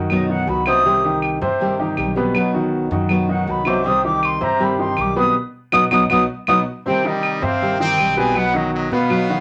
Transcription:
Already playing: upright bass F#2, grand piano D#3 D#4 F#4
0.10 nylon-string guitar B2 F#3 B3 D#4 F#4, flute D#5, claves
0.29 grand piano D#3 D#4 F#4, flute F#5
0.47 upright bass C2, nylon-string guitar F#3 B3 D#4 F#4, flute B5
0.66 grand piano C3 C4 C5, nylon-string guitar F#3 B3 D#4 F#4, flute D#6, claves
0.84 nylon-string guitar C3 D#3 G3 C4 G4, grand piano C3 C4 C5
1.04 grand piano D#3 D#4 G4
1.22 claves
1.41 upright bass G2, grand piano C3 C4 C5, muted nylon-string guitar stroke
1.60 nylon-string guitar C3 D#3 G3 C4 G4
1.79 grand piano D#3 D#4 G4
1.97 upright bass B1, nylon-string guitar D#3 G3 C4 G4, claves
2.16 grand piano B2 B3 B4, nylon-string guitar D#3 G3 C4 G4
2.35 nylon-string guitar B2 F#3 B3 D#4 F#4, claves
2.54 grand piano D#3 D#4 F#4
2.91 upright bass F#2, grand piano D#3 D#4 F#4, muted nylon-string guitar stroke
3.09 nylon-string guitar B2 F#3 B3 D#4 F#4, claves
3.29 grand piano D#3 D#4 F#4, flute F#5
3.47 upright bass C2, nylon-string guitar F#3 B3 D#4 F#4, flute B5
3.65 grand piano C3 C4 C5, nylon-string guitar F#3 B3 D#4 F#4, flute D6, claves
3.83 nylon-string guitar C3 D#3 G3 C4 G4, grand piano C3 C4 C5
3.88 flute D#6
4.04 grand piano D#3 D#4 G4, flute D6
4.23 flute C6, claves
4.40 upright bass G2, grand piano C3 C4 C5, flute A#5, muted nylon-string guitar stroke
4.59 nylon-string guitar C3 D#3 G3 C4 G4
4.64 flute B5
4.79 grand piano D#3 D#4 G4, flute C6
4.97 upright bass B1, nylon-string guitar D#3 G3 C4 G4, claves
5.01 flute D6
5.16 grand piano B2 B3 B4, nylon-string guitar D#3 G3 C4 G4, flute D#6
5.72 upright bass B1, nylon-string guitar F#3 B3 D#4, grand piano B3 D#4 F#4, flute D#6, claves
5.91 upright bass B1, nylon-string guitar F#3 B3 D#4, grand piano B3 D#4 F#4, flute D#6, claves
6.10 upright bass B1, nylon-string guitar F#3 B3 D#4, grand piano B3 D#4 F#4, flute D#6, claves
6.47 upright bass B1, nylon-string guitar F#3 B3 D#4, grand piano B3 D#4 F#4, flute D#6, claves
6.86 grand piano C3 C4 C5, nylon-string guitar C3 D#3 G3 C4 G4, trumpet C4, flute G5
7.05 grand piano D#3 D#4 G4, trumpet G3, flute D#5
7.23 claves
7.42 upright bass G2, grand piano C3 C4 C5, trumpet C4, flute F5, muted nylon-string guitar stroke
7.61 nylon-string guitar C3 D#3 G3 C4 G4
7.80 grand piano D#3 D#4 G4, trumpet C4, flute G5
7.98 upright bass B1, nylon-string guitar D#3 G3 C4 G4, claves
8.17 grand piano B2 B3 B4, nylon-string guitar D#3 G3 C4 G4, trumpet C4, flute G#5
8.35 nylon-string guitar B2 F#3 B3 D#4 F#4, trumpet B3, flute F#5, claves
8.55 grand piano D#3 D#4 F#4, trumpet F#3, flute D#5
8.74 trumpet F#3, flute D#5
8.91 upright bass B2, grand piano B2 B3 B4, trumpet B3, flute F5, muted nylon-string guitar stroke
9.09 nylon-string guitar B2 F#3 B3 D#4 F#4, claves
9.30 grand piano D#3 D#4 F#4

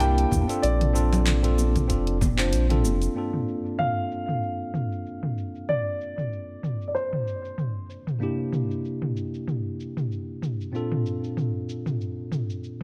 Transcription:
Already playing: analog synth bass C2
0.00 tine electric piano A#3 D4 E4 G4, grand piano G5, closed hi-hat, cabasa
0.18 closed hi-hat
0.31 analog synth bass E2, kick, mid tom, high conga, cabasa
0.48 tine electric piano C4 D4 F4 A4, closed hi-hat, cabasa
0.62 analog synth bass A#1, grand piano D5, closed hi-hat, cabasa
0.81 closed hi-hat, mid tom
0.93 tine electric piano C4 D4 F4 A4, cabasa
1.13 closed hi-hat, low conga, cabasa
1.26 clap, closed hi-hat, mid tom, cabasa
1.43 tine electric piano C4 D4 F4 A4, closed hi-hat
1.58 high conga, cabasa
1.76 kick, closed hi-hat, mid tom, cabasa
1.88 analog synth bass F1, tine electric piano C4 D4 F4 A4, kick, closed hi-hat, cabasa
2.07 closed hi-hat
2.21 kick, mid tom, high conga, cabasa
2.37 tine electric piano C4 D4 F4 C5, clap, closed hi-hat, cabasa
2.53 analog synth bass A#1, closed hi-hat, cabasa
2.69 tine electric piano C4 D4 F4 A4, closed hi-hat, mid tom
2.84 analog synth bass F1, high conga, cabasa
3.02 closed hi-hat, cabasa
3.14 tine electric piano G2 A#3 C4 D4 F4, cabasa
3.18 tine electric piano A4
3.33 mid tom
3.48 cabasa
3.66 cabasa
3.79 grand piano F5, mid tom, cabasa
4.11 cabasa
4.28 mid tom, cabasa
4.43 cabasa
4.74 mid tom, cabasa
4.92 cabasa
5.06 cabasa
5.23 mid tom
5.38 cabasa
5.55 cabasa
5.69 grand piano D5, mid tom, cabasa
6.01 cabasa
6.18 mid tom, cabasa
6.33 cabasa
6.63 mid tom, cabasa
6.82 cabasa
6.88 grand piano D5
6.95 grand piano C5, cabasa
7.13 mid tom
7.27 cabasa
7.45 cabasa
7.58 mid tom, cabasa
7.90 cabasa
8.07 mid tom, cabasa
8.19 tine electric piano C3 A#3 D4 E4, cabasa
8.23 tine electric piano G4
8.53 mid tom, cabasa
8.71 cabasa
8.85 cabasa
9.02 mid tom
9.17 cabasa
9.34 cabasa
9.48 mid tom, cabasa
9.80 cabasa
9.97 mid tom, cabasa
10.12 cabasa
10.42 mid tom, cabasa
10.61 cabasa
10.72 tine electric piano A#2 C4 D4 F4, cabasa
10.76 tine electric piano A4
10.92 mid tom
11.06 cabasa
11.24 cabasa
11.37 mid tom, cabasa
11.69 cabasa
11.86 mid tom, cabasa
12.01 cabasa
12.32 mid tom, cabasa
12.50 cabasa
12.64 cabasa

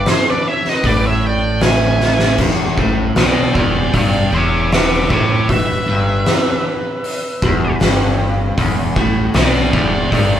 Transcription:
0.06 lead electric guitar C5, snare, open hi-hat
0.11 lead electric guitar G#4
0.30 lead electric guitar B4 D5
0.48 lead electric guitar C#5 E5
0.65 snare
0.69 lead electric guitar B4 D#5
0.83 upright bass A1, overdriven electric guitar A2, lead electric guitar D5, kick, open hi-hat
0.89 lead electric guitar B4
1.06 lead electric guitar C#5 E5
1.27 lead electric guitar D5 G5
1.61 lead electric guitar E5 G#5, snare, open hi-hat
2.00 snare
2.19 snare
2.38 upright bass E1, overdriven electric guitar E2, kick, open hi-hat, splash
2.78 upright bass A1, overdriven electric guitar A2, kick
3.16 upright bass B1, overdriven electric guitar B2, lead electric guitar E5 G5, snare, open hi-hat
3.21 lead electric guitar D5
3.54 upright bass E1, overdriven electric guitar E2, lead electric guitar E5 G5, kick
3.59 lead electric guitar D5
3.94 upright bass G1, overdriven electric guitar G2, lead electric guitar E5 G5, kick, open hi-hat
3.98 lead electric guitar D5
4.32 upright bass E1, overdriven electric guitar E2, lead electric guitar C5 C#5
4.37 lead electric guitar E5
4.72 lead electric guitar B4 C5 E5, snare, open hi-hat
5.10 upright bass A1, overdriven electric guitar A2, lead electric guitar C5 C#5 E5, kick
5.49 upright bass E1, overdriven electric guitar E2, lead electric guitar B4 E5, kick, open hi-hat
5.86 upright bass G1, overdriven electric guitar G2
6.26 snare, open hi-hat
7.04 open hi-hat
7.42 upright bass E1, overdriven electric guitar E2, kick
7.80 upright bass G1, overdriven electric guitar G2, snare, open hi-hat
8.57 upright bass E1, overdriven electric guitar E2, kick, open hi-hat
8.96 upright bass A1, overdriven electric guitar A2, kick
9.34 upright bass B1, overdriven electric guitar B2, lead electric guitar D5 E5 G5, snare, open hi-hat
9.73 upright bass E1, overdriven electric guitar E2, lead electric guitar D5 E5 G5, kick
10.11 upright bass G1, overdriven electric guitar G2, lead electric guitar D5 E5 G5, kick, open hi-hat

